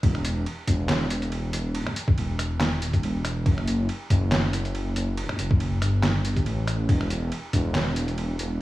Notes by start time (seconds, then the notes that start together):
0.03 E1, kick, ride
0.15 finger snap
0.25 closed hi-hat
0.46 ride
0.67 E1, kick, closed hi-hat
0.89 snare, clap, ride
1.10 closed hi-hat
1.22 closed hi-hat
1.32 ride
1.53 E1, closed hi-hat
1.75 ride
1.87 finger snap
1.96 closed hi-hat
2.08 kick
2.18 E1, ride
2.39 finger snap, closed hi-hat
2.60 snare, clap, ride
2.77 D#1
2.82 closed hi-hat
2.93 kick, closed hi-hat
3.03 E1, ride
3.25 finger snap, closed hi-hat
3.46 F#1, kick, ride
3.58 finger snap
3.68 closed hi-hat
3.89 ride
4.10 F#1, kick, closed hi-hat
4.32 snare, clap, ride
4.53 closed hi-hat
4.65 closed hi-hat
4.75 ride
4.96 F#1, closed hi-hat
5.17 ride
5.29 finger snap
5.39 F#1, closed hi-hat
5.51 kick
5.60 ride
5.82 G1, finger snap, closed hi-hat
6.03 snare, clap, ride
6.25 closed hi-hat
6.36 kick, closed hi-hat
6.46 A1, ride
6.68 finger snap, closed hi-hat
6.89 E1, kick, ride
7.01 finger snap
7.10 closed hi-hat
7.32 ride
7.53 E1, kick, closed hi-hat
7.75 snare, clap, ride
7.96 closed hi-hat
8.08 closed hi-hat
8.18 ride
8.39 E1, closed hi-hat